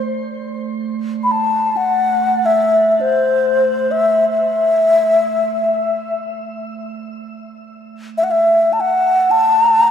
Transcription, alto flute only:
1.24 B5
1.31 A5
1.77 F#5
2.46 E5
2.91 E5
3.01 C5
3.91 E5
4.30 E5
8.18 E5
8.24 F#5
8.31 E5
8.73 A5
8.80 F#5
9.31 A5

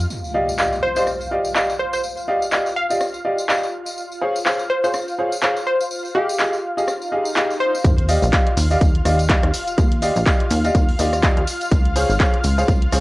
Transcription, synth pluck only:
0.83 C5
0.97 C5
1.79 C5
1.93 C5
2.76 F5
4.70 C5
4.84 C5
5.67 C5
6.15 G4
7.60 C5

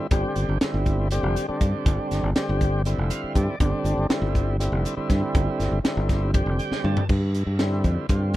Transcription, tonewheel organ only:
0.11 D3 G3 C4 G4
0.61 D3 G3 C4 E4
1.11 D3 G3 C4 G4
1.48 D3 G3 C4 D4
2.35 D3 G3 C4 G4
2.85 D3 G3 C4 E4
3.10 F5
3.36 D5
3.60 D3 G3 C4 D4
4.09 D3 G3 C4 E4
4.60 D3 G3 C4 E4
4.96 D3 G3 C4 E4
5.84 D3 G3 C4 E4
6.34 D3 G3 C4 G4
6.59 G5
6.84 A5
7.60 D3 G3 C4 E4
8.09 D3 G3 C4 F4

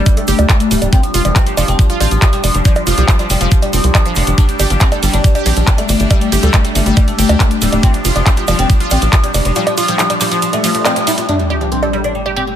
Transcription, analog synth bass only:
0.28 G1
0.39 D2
0.71 D1
0.82 D1
1.14 F1
1.25 F1
1.57 F1
1.68 F1
2.01 A1
2.11 A1
2.44 F1
2.54 F1
2.87 F1
2.98 C2
3.30 F1
3.41 F1
3.73 F1
3.84 C2
4.16 F1
4.27 F1
4.60 G1
4.70 G1
5.03 G1
5.13 G1
5.46 A#1
5.57 A#1
5.89 G1
6.00 G1
6.32 G1
6.43 D2
6.75 G1
6.86 G1
7.18 G1
7.29 D2
7.62 D1
7.72 D1
8.05 F1
8.16 F1
8.48 F1
8.59 F1
8.91 A1
9.02 A1
9.34 F1
9.45 F1

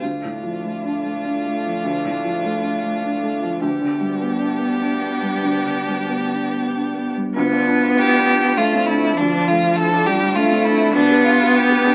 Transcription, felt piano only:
0.02 D2
0.24 A2
0.43 F3
0.64 A3
0.84 D4
1.04 A3
1.25 D4
1.45 A3
1.66 F3
1.84 D2
2.05 A2
2.24 F3
2.43 A3
2.64 D4
2.83 A3
3.03 D4
3.23 A3
3.43 F3
3.62 D2
3.81 D3
4.00 G3
4.20 B3
4.40 D4
4.58 B3
4.80 D4
5.00 B3
5.22 G3
5.43 D2
5.66 D3
5.87 G3
6.09 B3
6.30 D4
6.51 B3
6.74 D4
6.94 B3
7.16 G3
7.36 D2
7.53 F4
7.68 D4
7.83 F4
7.98 E4
8.13 F4
8.29 D4
8.45 F4
8.59 D4
8.74 C4
8.89 D4
9.05 F4
9.20 D2
9.36 D4
9.50 A3
9.63 F4
9.80 E4
9.92 F4
10.09 D4
10.23 F4
10.37 D4
10.51 C4
10.67 D4
10.82 F4
10.95 D2
11.10 G4
11.25 D4
11.41 G4
11.53 F4
11.70 G4
11.84 D4

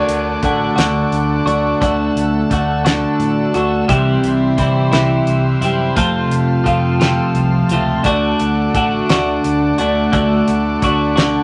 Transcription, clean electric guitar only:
Already playing: D3 A3 D4 F#4
0.43 D3 A3 D4 F#4
0.76 D3 A3 D4 F#4
1.46 A3 D4 F#4
1.81 D3 A3 D4 F#4
2.50 D3 A3 D4 F#4
2.85 D3 A3 D4 F#4
3.54 A3 D4 F#4
3.88 C3 E3 G3 C4 E4
4.57 E3 G3 C4 E4
4.92 C3 E3 G3 C4 E4
5.61 G3 C4 E4
5.95 F2 C3 F3 A3 C4 F4
6.64 F3 A3 C4 F4
7.00 F2 C3 F3 A3 C4 F4
7.71 F3 A3 C4 F4
8.03 D3 A3 D4 F#4
8.75 D3 A3 D4 F#4
9.09 D3 A3 D4 F#4
9.78 A3 D4 F#4
10.12 D3 A3 D4 F#4
10.82 D3 A3 D4 F#4
11.16 D3 A3 D4 F#4

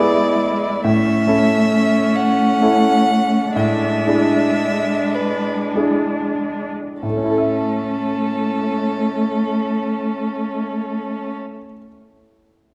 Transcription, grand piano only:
Already playing: A2 B3 E4 G#4
0.84 A2
1.27 C#4 E4 A4
2.62 C#4 E4 A4
3.56 A2
4.07 D4 E4 G#4
5.76 D4 E4 G#4
7.03 A2
7.10 A3
7.17 C#4
7.23 E4
7.31 A4
7.38 E5

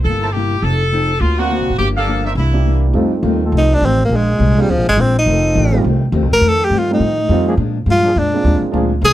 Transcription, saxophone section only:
0.04 A4
0.33 G4
0.63 A4
1.20 F4
1.38 F#4
1.78 G4
1.97 A4
2.38 E4

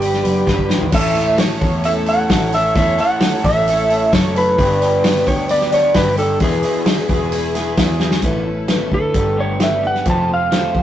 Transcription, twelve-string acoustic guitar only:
0.02 G3 D4 G4 B4
0.48 G3 D4 G4 B4
0.70 D4 G4 B4
0.92 A2 E3 A3 C#4 E4 A4
1.39 A3 C#4 E4 A4
1.84 A2 E3 A3 C#4 E4 A4
2.30 A3 C#4 E4 A4
2.54 A3 C#4 E4 A4
2.77 A2 E3 A3 C#4 E4 A4
3.21 A3 C#4 E4 A4
3.45 A3 C#4 E4 A4
3.68 A2 E3 A3 C#4 E4 A4
4.13 A3 C#4 E4 A4
4.36 A3 C#4 E4 A4
4.60 G2 D3 G3 B3 D4 G4
5.04 G3 B3 D4 G4
5.27 G3 B3 D4 G4
5.50 G2 D3 G3 B3 D4 G4
5.95 G3 B3 D4 G4
6.19 G3 B3 D4 G4
6.42 E3 B3 E4 G#4
6.86 E3 B3 E4 G#4
7.10 B3 E4 G#4
7.32 E3 B3 E4 G#4
7.77 E3 B3 E4 G#4
8.01 B3 E4 G#4
8.23 A3 C#4 E4 B4
8.70 A3 C#4 E4 B4
8.91 C#4 E4 B4
9.15 A3 D4 G4 B4
9.61 G3 A3 D4 G4 B4
9.84 D4 G4 B4
10.06 F3 A3 C4 G4 C5
10.52 F3 A3 C4 G4 C5
10.75 A3 G4 C5

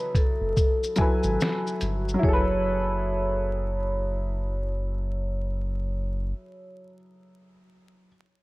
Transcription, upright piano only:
Already playing: F#3 E4 G#4 A4 B4
0.96 F#3 E4 A4 G#5
1.01 B4
2.14 F#3
2.19 E4
2.24 G#4
2.28 A4
2.33 B4

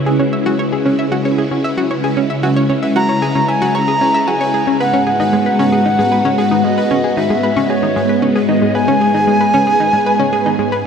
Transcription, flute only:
2.96 A#5
3.49 G#5
3.75 A#5
4.27 G#5
4.80 F#5
5.07 F#5
6.64 D#5
7.17 E5
7.70 C#5
8.49 D#5
8.75 G#5

